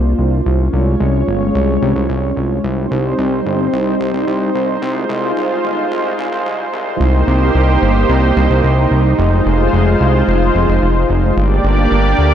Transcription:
Already playing: C2 A#3 D4 F4 C5
0.18 C2
0.46 C2 G#3 C#4 C#5
0.73 C2
1.00 C2
1.28 G1
1.55 C2
1.82 C2
1.96 C2
2.09 C2
2.37 C2
2.64 C2 G3 C4 D#4 C5
2.91 C2
3.18 C2
3.46 G1
3.73 C2
4.00 C2
4.14 C2
4.27 C2
4.55 C2
4.82 C2 G#3 F4
5.09 C2
5.36 C2
5.64 G1
5.91 C2
6.18 C2
6.32 C2
6.46 C2
6.73 C2
7.00 C2 A#3 D#4 G4 C5
7.27 C2
7.55 C2
7.82 G1
8.09 C2
8.36 C2
8.50 C2
8.64 C2
8.91 C2
9.19 F1 G#3 F4 C5
9.46 F1
9.73 F1
10.00 C2
10.28 F1
10.55 F1
10.69 F1
10.82 F1
11.09 F1
11.37 G1 A#3 D4 G4 D5
11.64 G1
11.91 G1
12.18 D2

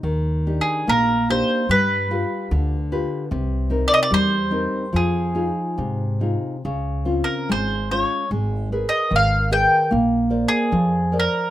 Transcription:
0.03 D#2 D#3
0.47 D4 D#4 G4
0.61 G#4
0.87 A#1 A#3 A#4
1.29 D4 D#4 G4 C5
1.69 G2 G3 B4
2.11 F4 G4 B4
2.51 D2 D3
2.92 F4 G4 B4
3.31 C2 C3
3.70 C4 D#4 A#4
3.88 D5
3.94 D#5
4.03 D5
4.11 E2 G3 C5
4.50 C4 D#4 A#4
4.93 F2 F3 G#4
5.35 D#4 F4 G#4
5.78 G#2 C3
6.21 D#4 F4 G#4
6.65 C#2 C#3
7.05 C4 C#4 F4
7.24 A#4
7.49 G#1 G#3 C5
7.91 C#4 F4 C#5
8.31 G#1 G#3
8.72 G#4 A#4 B4
8.89 D#5
9.10 G#1 D#3
9.16 F5
9.51 G#4 A#4 B4 G5
9.91 A#1 A#3
10.30 A#4 C5 D5
10.48 G#4
10.72 F2 F3
11.12 A#4 C5 D5
11.20 A#4

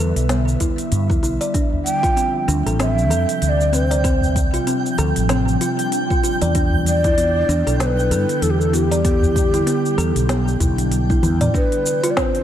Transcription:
Already playing: D3 G3 B4 E5
0.00 E2
0.16 B1, open hi-hat, shaker
0.29 B3, snare, open hi-hat, shaker
0.48 shaker
0.60 E4, kick, open hi-hat, udu, shaker
0.78 open hi-hat, shaker
0.92 G2, open hi-hat, shaker
1.10 E4, kick, shaker
1.23 B1 E4, open hi-hat, shaker
1.41 D5, open hi-hat, shaker
1.54 C3 F3 D4 G5, kick, open hi-hat, shaker
1.73 udu
1.85 G5, open hi-hat, shaker
2.03 F4, kick, open hi-hat, shaker
2.17 C4, open hi-hat, shaker
2.48 D2 D4, open hi-hat, shaker
2.66 A1 A4, open hi-hat, shaker
2.79 C4 E5, snare, open hi-hat, shaker
2.99 shaker
3.10 F2 A4, open hi-hat, shaker
3.29 open hi-hat, shaker
3.42 D2 E5, open hi-hat, shaker
3.49 D5
3.61 shaker
3.73 C4 B4, open hi-hat, shaker
3.87 C5
3.91 D5, open hi-hat, shaker
4.04 C4 D4, kick, open hi-hat, shaker
4.22 udu, shaker
4.36 kick, open hi-hat, shaker
4.54 F4, open hi-hat, shaker
4.67 C4, open hi-hat, shaker
4.86 shaker
4.98 D2 A4, open hi-hat, shaker
5.16 A1, open hi-hat, shaker
5.29 C4, snare, open hi-hat, shaker
5.48 shaker
5.61 F4, open hi-hat, shaker
5.79 open hi-hat, shaker
5.92 open hi-hat, shaker
6.10 F4, kick, shaker
6.23 F4, open hi-hat, shaker
6.42 E2 D5, open hi-hat, shaker
6.55 D3 G3 D4 E4, kick, open hi-hat, shaker
6.73 udu
6.86 D5, open hi-hat, shaker
7.04 E4, kick, open hi-hat, shaker
7.18 B3, open hi-hat, shaker
7.49 E2 D4, open hi-hat, shaker
7.67 B1 A4, open hi-hat, shaker
7.80 B3 C5, snare, open hi-hat, shaker
7.85 B4
7.99 shaker
8.11 G2 A4, open hi-hat, shaker
8.29 open hi-hat, shaker
8.42 E2 A4, open hi-hat, shaker
8.51 G4
8.60 A4, shaker
8.73 B3 G4, open hi-hat, shaker
8.91 D5, open hi-hat, shaker
9.05 B3 D4, kick, open hi-hat, shaker
9.22 udu, shaker
9.36 kick, open hi-hat, shaker
9.54 E4, open hi-hat, shaker
9.67 B3, open hi-hat, shaker
9.86 shaker
9.98 E2 A4, open hi-hat, shaker
10.16 B1, open hi-hat, shaker
10.29 B3, snare, open hi-hat, shaker
10.48 shaker
10.60 B1 E4, kick, open hi-hat, udu, shaker
10.78 open hi-hat, shaker
10.92 open hi-hat, shaker
11.10 E4, kick, high tom, shaker
11.23 E2 E4, open hi-hat, mid tom, shaker
11.41 D5, mid tom, open hi-hat, shaker
11.54 C3 F3 G3 D4 B4 D5, kick, shaker
11.72 open hi-hat
11.86 shaker
12.03 F4, open hi-hat, shaker
12.11 D5
12.17 C4 C5, kick, snare, shaker
12.35 open hi-hat

